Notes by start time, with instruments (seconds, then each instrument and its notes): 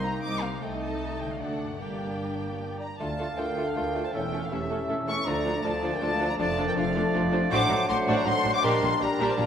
Already playing: double bass section C2, cello section C2, harp C3 G3 A#3 D#4 A#4, bassoon A#3, french horn section A#3 D#4, clarinet D#4
0.03 viola section A#3 C4, violin section G4 C5 A#5
0.23 double bass section C2, cello section C2, viola section C4 D#4, violin section A#4 D#5 D6
0.42 harp C3, viola section A#3 C4, violin section G4 C5 F5
0.48 harp A3
0.53 harp D#4
0.57 cello section C2, harp A4
0.61 double bass section C2, viola section A3 D#4, french horn section A3 D#4, bassoon A3, violin section A4 D#5 G5
0.80 violin section A5
1.20 harp D3, violin section G5
1.26 harp A3
1.30 harp D4, violin section F5
1.35 harp A4, violin section A4 D5
1.39 double bass section D2, cello section D2, viola section A3 D4, french horn section A3 D4, clarinet D4, violin section F#5
1.61 harp G2
1.66 harp A#3
1.71 harp D4
1.75 harp G4, violin section G4 D5
1.79 double bass section G1, cello section G2, viola section A#3 D4, french horn section A#3 D4, bassoon A#3, violin section G5
2.80 flute D5, violin section A#5
2.99 cello section D2, double bass section D2, harp D3, trombone section D3 A3, bassoon A3, viola section A3 D4, french horn section D4 A4, violin section F4 A4 A5, clarinet F4, flute D5, trumpet F5
3.10 harp A3
3.18 bassoon A3, viola section A3 D4, harp D4, violin section F4 A4, clarinet F4
3.28 harp F4
3.37 cello section D2, double bass section D2, bassoon A3, viola section A3 D4, violin section F4 A4 G5, clarinet F4, harp A4, flute A#4
3.48 harp D5
3.56 viola section A3 D4, bassoon A3, violin section F4 A4, clarinet F4, harp F5
3.66 flute A4, violin section F5, harp A5
3.74 cello section D2, double bass section D2, bassoon A3, viola section A3 D4, violin section F4 A4 G5, clarinet F4, flute A#4, harp F5
3.85 harp D5
3.94 bassoon A3, viola section A3 D4, violin section F4 A4, clarinet F4, harp A4
4.04 harp F4, flute C5, violin section A5
4.13 double bass section E1, cello section E2, harp E3, trombone section E3 A3, bassoon A3, viola section A3 C#4, french horn section C#4 A4, clarinet C#4, violin section E4 A4 G5, flute C#5, trumpet E5
4.23 harp A3
4.32 bassoon A3, viola section A3 C#4, harp C#4, clarinet C#4, violin section E4 A4
4.42 harp E4, flute A4, violin section F5
4.50 double bass section E1, cello section E2, trombone section E3 A3, bassoon A3, viola section A3 C#4, french horn section C#4 A4, clarinet C#4, violin section E4 A4 E5, flute G4, harp A4, trumpet E5
4.61 harp C#5
4.70 bassoon A3, viola section A3 C#4, clarinet C#4, violin section E4 A4, harp E5
4.80 harp A5
4.88 double bass section E1, cello section E2, bassoon A3, viola section A3 C#4, clarinet C#4, violin section E4 A4, harp E5
4.99 harp C#5
5.07 bassoon A3, viola section A3 C#4, clarinet C#4, violin section E4 A4 C#6, harp A4, flute E5
5.18 harp E4
5.26 cello section D2, double bass section D2, harp D3, bassoon F3, trombone section F3 A3, viola section A3 D4, clarinet D4, french horn section D4 A4, violin section F4 A4 A#5, flute D5, trumpet D5
5.36 harp A3
5.45 bassoon F3, viola section A3 D4, clarinet D4, harp D4, violin section F4 A4
5.55 harp F4
5.63 cello section D2, double bass section D2, bassoon F3, trombone section F3 A3, viola section A3 D4, clarinet D4, french horn section D4 A4, violin section F4 A4 A5, harp A4, flute D5, trumpet D5
5.74 harp D5
5.83 bassoon F3, viola section A3 D4, clarinet D4, violin section F4 A4, harp F5
5.92 flute A#4, violin section G5, harp A5
6.00 cello section D2, double bass section D2, trombone section F3 A3, bassoon F3, viola section A3 D4, clarinet D4, french horn section D4 A4, violin section F4 A4 A5, flute D5, trumpet D5, harp F5
6.11 harp D5
6.20 bassoon F3, viola section A3 D4, clarinet D4, violin section F4 A4, harp A4
6.29 harp F4, flute D5, violin section A#5
6.39 double bass section F1, cello section F2, harp F3, bassoon F3, trombone section F3 A3, viola section A3 D4, clarinet D4, french horn section D4 A4, violin section F4 A4 A5, flute D5, trumpet D5
6.49 harp A3
6.58 bassoon F3, viola section A3 D4, clarinet D4, harp D4, violin section F4 A4
6.67 harp F4, flute A#4, violin section G5
6.75 double bass section F1, cello section F2, bassoon F3, trombone section F3 A3, viola section A3 D4, clarinet D4, french horn section D4 A4, violin section F4 A4 F5, flute A4, harp A4, trumpet D5
6.86 harp D5
6.95 bassoon F3, viola section A3 D4, clarinet D4, violin section F4 A4, harp F5
7.05 harp A5
7.14 double bass section F1, cello section F2, bassoon F3, viola section A3 D4, clarinet D4, violin section F4 A4, harp F5
7.23 harp D5
7.32 bassoon F3, viola section A3 D4, clarinet D4, violin section F4 A4, harp A4
7.41 harp F4
7.51 double bass section A1, harp A2, cello section A2, bassoon F#3, trombone section F#3 A3, viola section A3 D4, clarinet D4, french horn section D4 A4, violin section F#4 C5 D6, trumpet C5, flute F#5
7.60 harp A3
7.68 double bass section A1, cello section A2, viola section A3 D4, harp C4, violin section D#4 A#4
7.79 harp D4
7.88 double bass section A1, cello section A2, trombone section F#3 A3, viola section A3 D4, french horn section D4 A4, violin section F#4 C5 C6, harp F#4, trumpet C5, flute F#5
7.98 harp C5
8.07 double bass section A1, cello section A2, viola section A3 D4, violin section F#4 C5, harp D5
8.17 flute D5, harp F#5, violin section A#5
8.25 double bass section A1, cello section A2, trombone section F#3 A3, viola section A3 D4, french horn section D4 A4, violin section D#4 A#4 C6, trumpet C5, harp D5, flute F#5
8.35 harp C5
8.44 double bass section A1, cello section A2, viola section A3 D4, violin section F#4 C5, harp F#4
8.54 harp D4, flute F#5, violin section D6
8.62 double bass section A#1, cello section A#2, harp A#2, trombone section G3 A#3, bassoon G3, viola section G3 D4, french horn section D4 G4, violin section G4 A#4 C6, trumpet A#4, flute D#5
8.74 harp G3
8.82 double bass section A#1, cello section A#2, viola section G3 D4, harp A#3, violin section F4 A4
8.92 harp D4
9.00 double bass section A#1, cello section A#2, trombone section G3 A#3, viola section G3 D4, french horn section D4 G4, violin section G4 A#4 A#5, harp G4, trumpet A#4, flute D5
9.11 harp A#4
9.18 double bass section A#1, cello section A#2, viola section G3 D4, violin section G4 A#4, harp D5
9.29 flute C5, harp G5, violin section A5
9.38 double bass section A#1, cello section A#2, viola section G3 D4, trombone section G3 A#3, french horn section D4 G4, violin section F4 A4 A#5, trumpet A#4, flute D5, harp D5